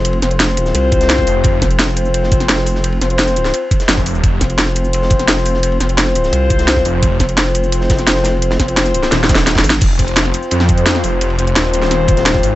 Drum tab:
CC |------------------------------------------------|------------------------------------------------|------------------------------------------------|------------------------------------------------|
RD |x--x--x--x--x-----x-----x-----x-----x-----x-----|x-----x--x--x-----x-----x-----x-----x-----x-----|x--x--x--x--x-----x-----x-----x-----x-----x-----|x-----x--x--x-----x-----x-----x-----x-----x-----|
HH |x-----x--x--x-----x-----x-----x--x--x-----o-----|x-----x--x--x-----x-----x-----x--x--x-----o-----|x-----x--x--x--x--x-----x-----x--x--x-----o-----|x-----x--x--x-----x-----x-----x--x--x-----o-----|
SH |------x-----------x--x--------x--x--------x-----|------x-----------x--x--------x--x--------x-----|------x-----------x--x--------x--x--------x--x--|------x-----------x--x--------x--x--------x-----|
SD |------o-----o--------o-----------o--o-----------|------o-----o--------------o-----o--o--o-----o--|------o-----o--------o-----------o--o-----------|------o-----o--------------o-----o--o--o-----o--|
BD |------------------------------o--------o--------|o-----o-----------------------o-----------------|------------------------------o--------o--------|o-----o-----------------------o-----------------|

CC |------------------------------------------------|------------------------------------------------|------------------------------------------------|x-----------------------------------------------|
RD |x--x--x--x--x-----x-----x-----x-----x-----x-----|x-----x--x--x-----x-----x-----x-----x-----x-----|x--x-----x--x-----x-----x-----x--x--x--x--x-----|x-----x--x--x-----x-----x-----x-----x-----x-----|
HH |x-----x--x--x-----x-----x-----x--x--x-----o-----|x-----x--x--x-----x-----x-----x--x--x-----o-----|x-----x--x--x--x--x-----x-----x--x--x-----o-----|x-----x--x--x-----x-----x-----x--x--x-----o-----|
SH |------x-----------x--x--------x--x--------x-----|------x-----------x--x--------x--x--------x-----|------x-----------x--x--------x--x--------x--x--|------x-----------x--x--------x-----------x-----|
SD |------o-----o--------o-----------o--o-----------|------o-----o--------------o--o--o--o--o--o-----|---o--o-----o--------o--o---o-o-oo--o--oo---o---|------------o--o-----------o--------o--o--------|
BD |------------------------------o--------o--------|o-----o-----------------------o-----------------|------o-----------------------o--------o--------|o-----o-----------------------o-----------------|

CC |------------------------------------------------|
RD |x--x--x--x--x-----x-----x-----x-----x-----x-----|
HH |x-----x--x--x-----x-----x-----x--x--x-----o-----|
SH |------x-----------x--x--------x-----------x-----|
SD |------------o--------o--o--------o--o-----------|
BD |------------------------------o--------o--------|